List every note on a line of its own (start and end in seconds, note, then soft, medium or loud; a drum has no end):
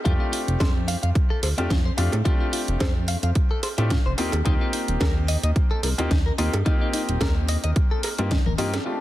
0.04 0.16 F2 loud
0.04 1.54 A3 medium
0.04 1.54 C4 medium
0.04 1.54 D4 medium
0.04 0.13 F4 loud
0.04 1.55 F4 medium
0.04 1.55 G4 loud
0.04 kick loud
0.04 closed hi-hat medium
0.20 0.27 F4 medium
0.32 0.40 F4 medium
0.32 open hi-hat loud
0.48 0.57 F1 medium
0.48 closed hi-hat medium
0.60 0.96 F2 medium
0.60 0.72 C5 medium
0.60 kick loud
0.60 snare loud
0.60 closed hi-hat soft
0.60 cowbell medium
0.88 0.95 F5 medium
0.88 open hi-hat medium
1.03 1.12 F2 medium
1.03 1.09 F5 medium
1.03 closed hi-hat medium
1.15 kick loud
1.15 closed hi-hat medium
1.30 1.40 A4 medium
1.43 1.54 D2 medium
1.43 1.47 C5 medium
1.43 open hi-hat loud
1.43 cowbell medium
1.58 1.68 F2 soft
1.58 1.69 A3 medium
1.58 1.64 C4 medium
1.58 1.69 C4 medium
1.58 1.69 D4 medium
1.58 1.69 F4 medium
1.58 1.70 G4 loud
1.58 closed hi-hat medium
1.70 1.91 F2 medium
1.70 1.78 F4 medium
1.70 kick loud
1.70 snare loud
1.70 closed hi-hat soft
1.85 1.92 C5 medium
1.97 2.09 F2 medium
1.97 2.11 A3 medium
1.97 2.11 C4 medium
1.97 2.12 D4 medium
1.97 2.12 F4 medium
1.97 2.12 G4 loud
1.97 2.09 F5 medium
1.97 open hi-hat medium
2.12 2.22 A2 medium
2.12 closed hi-hat medium
2.12 cowbell medium
2.25 3.74 A3 medium
2.25 3.74 C4 medium
2.25 3.75 D4 medium
2.25 2.33 F4 loud
2.25 3.75 F4 medium
2.25 3.75 G4 loud
2.25 kick loud
2.25 closed hi-hat medium
2.40 2.47 F4 medium
2.53 2.61 F4 loud
2.53 open hi-hat loud
2.68 2.77 F1 medium
2.68 closed hi-hat medium
2.80 3.16 F2 medium
2.80 2.92 C5 medium
2.80 kick loud
2.80 snare loud
2.80 closed hi-hat medium
2.80 cowbell medium
3.08 3.16 F5 medium
3.08 open hi-hat medium
3.23 3.32 F2 medium
3.23 3.29 F5 medium
3.23 closed hi-hat medium
3.35 kick loud
3.35 closed hi-hat medium
3.51 3.60 A4 medium
3.63 3.68 C5 medium
3.63 open hi-hat medium
3.63 cowbell medium
3.78 3.97 A2 loud
3.78 3.89 A3 medium
3.78 3.89 C4 medium
3.78 3.84 C4 medium
3.78 3.89 D4 medium
3.78 3.90 F4 medium
3.78 3.90 G4 loud
3.78 closed hi-hat medium
3.90 3.98 F4 medium
3.90 kick loud
3.90 snare loud
3.90 closed hi-hat soft
4.05 4.15 F1 medium
4.05 4.12 C5 medium
4.18 4.30 D#2 soft
4.18 4.32 A#3 medium
4.18 4.32 C4 medium
4.18 4.32 D#4 medium
4.18 4.32 F4 medium
4.18 4.32 G4 loud
4.18 4.30 D#5 medium
4.18 open hi-hat medium
4.32 4.42 D#2 loud
4.32 closed hi-hat medium
4.32 cowbell medium
4.44 4.57 D#2 loud
4.44 5.94 A#3 medium
4.44 5.95 C4 medium
4.44 5.95 D#4 medium
4.44 4.53 D#4 loud
4.44 5.95 F4 medium
4.44 5.95 G4 loud
4.44 kick loud
4.44 closed hi-hat medium
4.61 4.67 D#4 medium
4.73 4.81 D#4 loud
4.73 open hi-hat loud
4.88 4.97 D#1 medium
4.88 closed hi-hat medium
5.00 5.37 D#2 medium
5.00 5.12 A#4 medium
5.00 kick loud
5.00 snare loud
5.00 closed hi-hat medium
5.00 cowbell medium
5.28 5.36 D#5 medium
5.28 open hi-hat medium
5.43 5.52 D#2 medium
5.43 5.50 D#5 medium
5.43 closed hi-hat medium
5.56 kick loud
5.56 closed hi-hat medium
5.71 5.80 A4 medium
5.83 5.94 C2 medium
5.83 5.88 A#4 medium
5.83 open hi-hat loud
5.83 cowbell medium
5.98 6.08 D#2 soft
5.98 6.09 A#3 medium
5.98 6.05 A#3 medium
5.98 6.10 C4 medium
5.98 6.10 D#4 medium
5.98 6.10 F4 medium
5.98 6.10 G4 loud
5.98 closed hi-hat medium
6.11 6.31 D#2 loud
6.11 6.19 D#4 medium
6.11 kick loud
6.11 snare loud
6.11 closed hi-hat medium
6.26 6.32 A#4 medium
6.38 6.49 D#2 medium
6.38 6.52 A#3 medium
6.38 6.52 C4 medium
6.38 6.52 D#4 medium
6.38 6.52 F4 medium
6.38 6.52 G4 loud
6.38 6.50 D#5 medium
6.38 open hi-hat medium
6.53 6.62 G2 medium
6.53 closed hi-hat medium
6.53 cowbell medium
6.65 8.15 A#3 medium
6.65 8.15 C4 medium
6.65 6.74 D#4 medium
6.65 8.15 D#4 medium
6.65 8.16 F4 medium
6.65 8.16 G4 loud
6.65 kick loud
6.65 closed hi-hat medium
6.81 6.87 D#4 medium
6.93 7.01 D#4 loud
6.93 open hi-hat loud
7.09 7.17 D#1 medium
7.09 closed hi-hat medium
7.21 7.57 D#2 medium
7.21 7.33 A#4 medium
7.21 kick loud
7.21 snare loud
7.21 closed hi-hat medium
7.21 cowbell medium
7.49 7.56 D#5 medium
7.49 open hi-hat medium
7.64 7.73 D#2 medium
7.64 7.70 D#5 medium
7.64 closed hi-hat medium
7.76 kick loud
7.76 closed hi-hat medium
7.91 8.00 A4 medium
8.03 8.08 A#4 medium
8.03 open hi-hat medium
8.03 cowbell medium
8.18 8.38 G2 loud
8.18 8.30 A#3 medium
8.18 8.25 A#3 medium
8.18 8.30 C4 medium
8.18 8.30 D#4 medium
8.18 8.30 F4 medium
8.18 8.30 G4 loud
8.18 closed hi-hat medium
8.31 8.39 D#4 medium
8.31 kick loud
8.31 snare loud
8.31 closed hi-hat medium
8.31 high tom medium
8.46 8.55 D#1 loud
8.46 8.52 A#4 medium
8.46 high tom medium
8.58 8.79 G2 loud
8.58 8.72 A#3 medium
8.58 8.72 C4 medium
8.58 8.72 D#4 medium
8.58 8.72 F4 medium
8.58 8.72 G4 loud
8.58 8.70 D#5 medium
8.58 open hi-hat medium
8.74 snare medium
8.74 closed hi-hat medium
8.74 cowbell medium
8.85 9.01 A3 medium
8.85 9.01 C4 medium
8.85 9.01 D4 medium
8.85 8.94 F4 medium
8.85 9.01 F4 medium
8.85 9.01 G4 medium
8.85 9.01 C5 medium
8.85 9.01 D5 medium
8.85 9.01 A5 medium
8.85 crash medium
8.85 tambourine soft